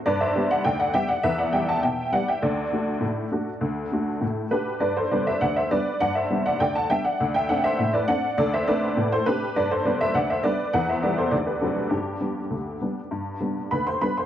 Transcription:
<<
  \new Staff \with { instrumentName = "Honky-tonk piano" } { \time 2/4 \key g \major \tempo 4 = 101 <b' d''>16 <c'' e''>8 <d'' fis''>16 <d'' g''>16 <d'' fis''>16 <e'' g''>16 <d'' fis''>16 | <b' e''>16 <d'' fis''>16 <e'' g''>16 <fis'' a''>16 <e'' g''>8 <d'' fis''>16 <e'' g''>16 | <a' d''>2~ | <a' d''>4 r8 <g' b'>8 |
<b' d''>16 <a' c''>16 <b' d''>16 <c'' e''>16 <d'' fis''>16 <c'' e''>16 <b' d''>8 | <d'' fis''>16 <c'' e''>8 <d'' fis''>16 <d'' g''>16 <fis'' a''>16 <e'' g''>16 <d'' fis''>16~ | <d'' fis''>16 <e'' g''>16 <d'' fis''>16 <c'' e''>8 <b' d''>16 <d'' fis''>8 | <a' d''>16 <c'' e''>16 <b' d''>8. <a' c''>16 <g' b'>8 |
<b' d''>16 <a' c''>16 <b' d''>16 <c'' e''>16 <d'' fis''>16 <c'' e''>16 <b' d''>8 | <b' fis''>16 <c'' e''>16 <b' d''>16 <a' c''>16 <a' d''>16 <g' b'>16 <fis' a'>8 | <d' g'>2~ | <d' g'>4 <b' b''>16 <c'' c'''>16 <b' b''>16 <c'' c'''>16 | }
  \new Staff \with { instrumentName = "Honky-tonk piano" } { \time 2/4 \key g \major g,8 <g b g'>8 d,8 <g b g'>8 | e,8 <g b g'>8 b,8 <g b g'>8 | d,8 <a d' fis'>8 a,8 <a d' fis'>8 | d,8 <a d' fis'>8 a,8 <a d' fis'>8 |
g,8 <g b d'>8 d,8 <g b d'>8 | g,8 <g b d'>8 d,8 <g b d'>8 | d,8 <a c' d'>8 a,8 <a c' d'>8 | d,8 <a c' d'>8 a,8 <a c' d'>8 |
g,8 <g b d'>8 d,8 <g b d'>8 | e,8 <g b g'>8 d,8 <fis c' d'>8 | g,8 <g b d'>8 d,8 <g b d'>8 | g,8 <g b d'>8 d,8 <g b d'>8 | }
>>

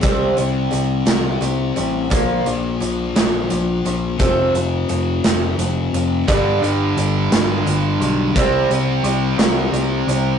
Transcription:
<<
  \new Staff \with { instrumentName = "Distorted electric guitar" } { \clef bass \time 6/8 \key c \dorian \tempo 4. = 58 <c g c'>2. | <bes, f bes>2. | <f, c f>2. | <g, d g>2. |
<c g c'>2. | }
  \new Staff \with { instrumentName = "Steel-string acoustic guitar" } { \clef bass \time 6/8 \key c \dorian <c g c'>8 <c g>8 <c g>8 <c g>8 <c g>8 <c g>8 | <bes, f bes>8 <bes, f>8 <bes, f>8 <bes, f>8 <bes, f>8 <bes, f>8 | <f a c'>8 <f a>8 <f a>8 <f a>8 <f a>8 <f a>8 | <g, d g>8 <g, d>8 <g, d>8 <g, d>8 <g, d>8 <g, d>8 |
<c g c'>8 <c g>8 <c g>8 <c g>8 <c g>8 <c g>8 | }
  \new Staff \with { instrumentName = "Distorted electric guitar" } { \clef bass \time 6/8 \key c \dorian r2. | r2. | r2. | <g, d g>2. |
<c g c'>2. | }
  \new Staff \with { instrumentName = "Picked electric bass" } { \clef bass \time 6/8 \key c \dorian c,8 c,8 c,8 c,8 c,8 a,,8 | bes,,8 bes,,8 bes,,8 bes,,8 bes,,8 bes,,8 | f,,8 f,,8 f,,8 f,,8 f,,8 f,,8 | g,,8 g,,8 g,,8 g,,8 g,,8 b,,8 |
c,8 c,8 c,8 c,8 c,8 c,8 | }
  \new DrumStaff \with { instrumentName = "Drums" } \drummode { \time 6/8 <hh bd>8 hh8 hh8 <hh sn>8 hh8 hh8 | <hh bd>8 hh8 hh8 <hh sn>8 hh8 hh8 | <hh bd>8 hh8 hh8 <hh sn>8 hh8 hh8 | <hh bd>8 hh8 hh8 <hh sn>8 hh8 hh8 |
<hh bd>8 hh8 hh8 <hh sn>8 hh8 hh8 | }
>>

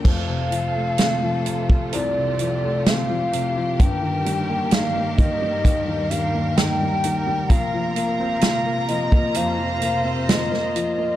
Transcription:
<<
  \new Staff \with { instrumentName = "Violin section" } { \time 4/4 \key f \mixolydian \tempo 4 = 65 r1 | r1 | bes''1 | }
  \new Staff \with { instrumentName = "Soft synth lead" } { \time 4/4 \key f \mixolydian f''2 d''4 f''4 | g''4 f''8 ees''4 f''8 g''4 | f''8 f''4 ees''8 f''4 ees''4 | }
  \new Staff \with { instrumentName = "String section" } { \time 4/4 \key f \mixolydian << { a'2 g'2 | bes'1~ | bes'2 c''2 | } \\ { <c a f'>1 | <g, ees bes>1 | <c bes f'>1 | } >> }
  \new Staff \with { instrumentName = "Felt piano" } { \clef bass \time 4/4 \key f \mixolydian <f,, f,>16 c16 f16 a16 c'16 f16 c16 f16 <c, c>16 c16 f16 a16 c'16 f16 c16 f16 | <g,, g,>16 ees16 g16 bes16 ees'16 g16 ees16 g16 <ees, ees>16 ees16 g16 bes16 ees'16 g16 ees16 g16 | <bes,, bes,>16 f16 bes16 c'16 f'16 bes16 f16 bes16 <f, f>16 f16 bes16 c'16 f'16 bes16 f16 bes16 | }
  \new DrumStaff \with { instrumentName = "Drums" } \drummode { \time 4/4 <cymc bd>8 hh8 <hh sn>8 hh16 bd16 hh8 hh8 <hh sn>8 hh8 | <hh bd>8 hh8 <hh sn>8 <hh bd>8 <hh bd>8 hh8 <hh sn>8 hh8 | <hh bd>8 hh8 <hh sn>8 hh16 bd16 hh8 hh8 <hh sn>16 sn16 hh8 | }
>>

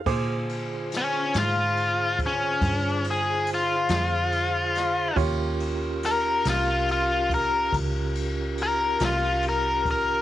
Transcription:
<<
  \new Staff \with { instrumentName = "Upright piano" } { \time 12/8 \key ees \major \tempo 4. = 47 <aes' c'' d'''>1. | <f' g' des''>1. | }
  \new Staff \with { instrumentName = "Tonewheel organ" } { \time 12/8 \key ees \major <d f' aes' c''>1. | <des' f' g' bes'>1. | }
  \new Staff \with { instrumentName = "Lead electric guitar" } { \time 12/8 \key ees \major r4 des'8 f'4 des'4 aes'8 f'2 | r4 bes'8 f'8 f'8 bes'8 r4 bes'8 f'8 bes'8 bes'8 | }
  \new Staff \with { instrumentName = "Fingered electric bass" } { \clef bass \time 12/8 \key ees \major bes,4. aes,4. g,4. f,4. | ees,4. c,4. des,4. c,4. | }
  \new DrumStaff \with { instrumentName = "Drums" } \drummode { \time 12/8 <cymc bd>8 cymr8 <cymr sn>8 <cymr sn>8 cymr8 <bd cymr>8 <bd cymr>8 cymr8 cymr8 <cymr sn>8 cymr8 <cymr sn>8 | <bd cymr>8 cymr8 <cymr sn>8 <cymr sn>8 cymr8 <bd cymr>8 <bd cymr>8 cymr8 cymr8 <cymr sn>8 cymr8 <bd cymr>8 | }
>>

